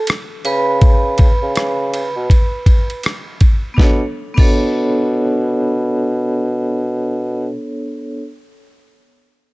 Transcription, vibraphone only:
0.45 B4 B5
3.74 B3 D4
3.80 A4 C#5
4.34 B3 D4
4.40 A4 C#5

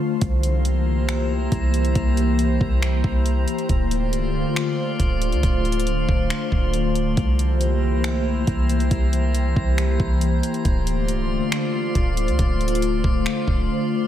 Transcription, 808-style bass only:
0.22 C2
1.52 C2
1.96 C2
2.61 C2
3.04 C2
3.69 D1
4.13 C1
5.00 D1
5.32 D2
5.43 D1
6.09 D1
6.52 D1
7.17 C2
8.48 C2
8.91 C2
9.56 C2
10.00 C2
10.65 D1
11.09 C1
11.95 D1
12.28 D2
12.39 D1
13.04 D1
13.48 D1

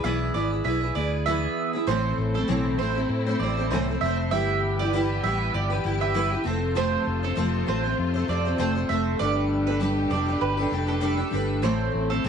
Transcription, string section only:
1.88 A3 C4 E4
4.32 E3 B3 G4
6.45 C3 A3 F4
9.20 B2 G4
11.63 C4 E4

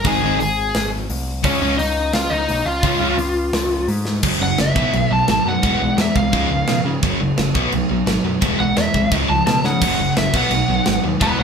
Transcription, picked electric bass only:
0.04 G#1
0.22 G#1
0.39 G#1
0.75 G#1
1.10 C2
1.44 C#2
1.61 C#2
1.80 C#2
2.13 C#2
2.32 C#2
2.50 B1
2.65 C#2
2.83 C#2
3.00 C#2
3.17 C#2
3.53 C#2
3.88 G#2
4.23 F#1
4.40 F#1
4.59 F#1
4.76 B1
4.93 B1
5.10 B1
5.28 G#1
5.45 F#2
5.64 E1
5.81 B1
5.97 E2
6.15 C2
6.33 C#2
6.51 C#2
6.68 B2
6.85 C#3
7.03 F#1
7.19 F#1
7.38 F#1
7.55 B1
7.73 B1
7.91 B1
8.06 G#1
8.25 F#2
8.42 E1
8.60 B1
8.77 E2
8.95 C2
9.11 C#2
9.30 C#2
9.47 B2
9.64 C#3
9.82 F#1
9.99 F#1
10.17 F#1
10.34 B1
10.51 B1
10.69 B1
10.87 G#1
11.04 D#2
11.21 E1
11.39 B1

